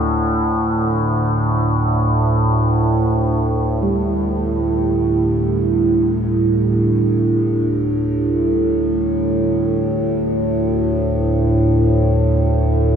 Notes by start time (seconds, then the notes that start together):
Already playing: D2 A2 A3 A4
3.82 D2 A2 G3 G4